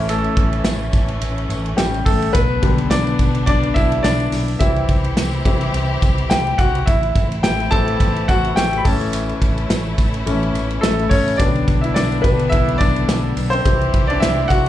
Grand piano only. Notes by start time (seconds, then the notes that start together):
Already playing: E3 A3 C#4 E4 E5
0.09 A3 A4
1.77 G3 G4
2.06 A3 A4
2.33 B3 B4
2.62 D3 G3 B3
2.90 D4 D5
3.46 D4 D5
3.74 E4 E5
4.03 D4 D5
4.59 E3 G3 C4 E4 E5
5.45 E3 G3 C4
6.30 G4 G5
6.58 F#4 F#5
6.86 E4 E5
7.43 G4 G5
7.71 E3 A3 C4 A4 A5
8.28 F#4 F#5
8.56 G4 G5
8.78 B5
8.85 E3 A3 C#4 A4 A5
10.26 E3 A3 C#4
10.81 A3 A4
11.09 C#4 C#5
11.37 D3 G3 B3 D4 D5
11.81 E4 E5
11.94 D4 D5
12.22 D3 G3 B3 B4
12.49 E4 E5
12.78 D4 D5
13.50 C4 C5
13.65 E3 G3 C4
14.07 D4 D5
14.20 E4 E5
14.48 F#4 F#5